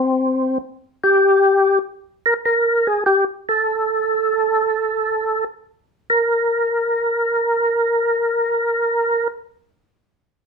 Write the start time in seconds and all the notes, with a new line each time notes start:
Already playing: C4
1.04 G4
2.26 A#4
2.45 A#4
2.87 G#4
3.06 G4
3.49 A4
6.10 A#4